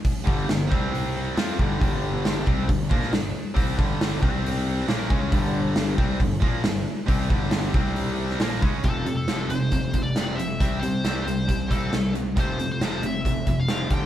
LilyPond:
<<
  \new Staff \with { instrumentName = "Lead electric guitar" } { \time 4/4 \key f \lydian \tempo 4 = 136 r1 | r1 | r1 | r1 |
r1 | a'8. a'8. c''4~ c''16 d''8. e''8~ | e''8 c''4 c''4 a'4 r8 | c''8. c''8. e''4~ e''16 f''8. g''8 | }
  \new Staff \with { instrumentName = "Distorted electric guitar" } { \clef bass \time 4/4 \key f \lydian r8 <g, d g>8 <g, d>8 <c g c'>4. <f c' f'>8 <g, d g>8 | <g, d g>4. <c g c'>8 <g, d>8 <bes, f bes>8 <g, d>8 r8 | <c g c'>8 <g, d g>4 <c g c'>4. <bes, f bes>8 <cis aes cis'>8 | <g, d g>4. <c g c'>8 <g, d>8 <bes, f bes>8 <g, d>8 r8 |
<c g c'>8 <g, d g>4 <c g c'>4. <bes, f bes>8 <des aes des'>8 | <f, c f>8 <f, c>8 <f, c f>8 <f, c>8 <f, c>8 <f, c>8 <f, c f>8 <f, c>8 | <c g c'>8 <c g>8 <c g c'>8 <c g>8 <c g>8 <c g c'>8 <c g>8 <c g>8 | <f, c f>8 <f, c>8 <f, c f>8 <f, c>8 <f, c>8 <f, c>8 <f, c f>8 <g, d g>8 | }
  \new Staff \with { instrumentName = "Distorted electric guitar" } { \clef bass \time 4/4 \key f \lydian r8 <g, d g>8 <g, d>8 <c g c'>4. <f c' f'>8 <g, d g>8 | <g, d g>4. <c g c'>8 <g, d>8 <bes, f bes>8 <g, d>8 r8 | <c g c'>8 <g, d g>4 <c g c'>4. <bes, f bes>8 <cis aes cis'>8 | <g, d g>4. <c g c'>8 <g, d>8 <bes, f bes>8 <g, d>8 r8 |
<c g c'>8 <g, d g>4 <c g c'>4. <bes, f bes>8 <des aes des'>8 | <f, c f>8 <f, c>8 <f, c f>8 <f, c>8 <f, c>8 <f, c>8 <f, c f>8 <f, c>8 | <c g c'>8 <c g>8 <c g c'>8 <c g>8 <c g>8 <c g c'>8 <c g>8 <c g>8 | <f, c f>8 <f, c>8 <f, c f>8 <f, c>8 <f, c>8 <f, c>8 <f, c f>8 <g, d g>8 | }
  \new Staff \with { instrumentName = "Picked electric bass" } { \clef bass \time 4/4 \key f \lydian r8 g,,8 g,,8 c,4. f,8 g,,8 | g,,4. c,8 g,,8 bes,,8 g,,8 r8 | c,8 g,,4 c,4. bes,,8 cis,8 | g,,4. c,8 g,,8 bes,,8 g,,8 r8 |
c,8 g,,4 c,4. bes,,8 des,8 | f,,8 f,8 f,,8 f,,8 f,,8 f,,8 f,,4 | c,8 c8 c,8 c,8 c,8 c,8 c,4 | f,,8 f,8 f,,8 f,,8 f,,8 f,,8 f,,8 g,,8 | }
  \new DrumStaff \with { instrumentName = "Drums" } \drummode { \time 4/4 <hho bd>8 bd8 <hho sn>8 bd8 hho4 <hho sn>8 bd8 | <hho bd>4 <hho sn>8 bd8 <hho bd>8 bd16 sn16 <hho sn>4 | <hho bd>8 bd8 <hho sn>8 bd8 hho4 <hho sn>8 bd8 | <hho bd>4 <hho sn>8 bd8 <hho bd>8 bd8 <hho sn>4 |
<hho bd>8 bd8 <hho sn>8 bd8 hho8. sn16 <hho sn>8 bd8 | <hh bd>8 hh8 <hh sn>8 hh8 <hh bd>8 <hh bd>8 <hh sn>8 hh8 | <hh bd>8 hh8 <hh sn>8 hh8 <hh bd>8 <hh bd>8 <hh sn>8 hh8 | <hh bd>8 hh8 <hh sn>8 hh8 <hh bd>8 <hh bd>8 <hh sn>8 <hh bd>8 | }
>>